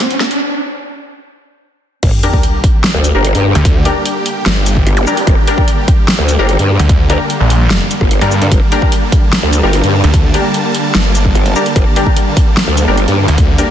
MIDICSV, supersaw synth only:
0, 0, Header, 1, 2, 480
1, 0, Start_track
1, 0, Key_signature, -2, "minor"
1, 0, Tempo, 405405
1, 482, Time_signature, 4, 2, 24, 8
1, 16228, End_track
2, 0, Start_track
2, 0, Title_t, "Supersaw synth"
2, 0, Program_c, 0, 81
2, 0, Note_on_c, 0, 45, 85
2, 0, Note_on_c, 0, 54, 77
2, 0, Note_on_c, 0, 62, 77
2, 0, Note_on_c, 0, 66, 95
2, 434, Note_off_c, 0, 62, 0
2, 464, Note_off_c, 0, 45, 0
2, 464, Note_off_c, 0, 54, 0
2, 464, Note_off_c, 0, 66, 0
2, 2401, Note_on_c, 0, 50, 86
2, 2401, Note_on_c, 0, 55, 80
2, 2401, Note_on_c, 0, 58, 78
2, 2402, Note_on_c, 0, 67, 92
2, 10059, Note_off_c, 0, 67, 0
2, 10082, Note_on_c, 0, 81, 95
2, 16228, Note_off_c, 0, 50, 0
2, 16228, Note_off_c, 0, 55, 0
2, 16228, Note_off_c, 0, 58, 0
2, 16228, Note_off_c, 0, 81, 0
2, 16228, End_track
0, 0, End_of_file